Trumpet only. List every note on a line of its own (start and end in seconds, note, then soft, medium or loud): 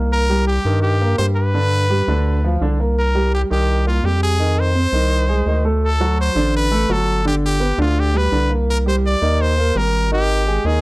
0.13 0.46 A#4 loud
0.47 0.81 G4 medium
0.82 1.16 G4 medium
1.18 1.26 C5 medium
1.36 2.57 B4 loud
2.99 3.31 A#4 medium
3.34 3.42 G4 medium
3.52 3.85 G4 medium
3.87 4.07 F4 medium
4.05 4.23 G4 medium
4.23 4.61 G#4 medium
4.59 5.66 C5 loud
5.84 6.16 A4 loud
6.21 6.53 C5 loud
6.57 6.93 B4 loud
6.92 7.26 A4 medium
7.27 7.35 G4 medium
7.46 7.78 G4 medium
7.82 8.01 F4 medium
7.99 8.19 G4 medium
8.17 8.52 B4 loud
8.70 8.78 A#4 loud
8.88 8.96 C5 medium
9.06 9.43 D5 loud
9.41 9.79 C5 loud
9.77 10.12 A#4 medium
10.13 10.67 G4 loud
10.66 10.81 G#4 medium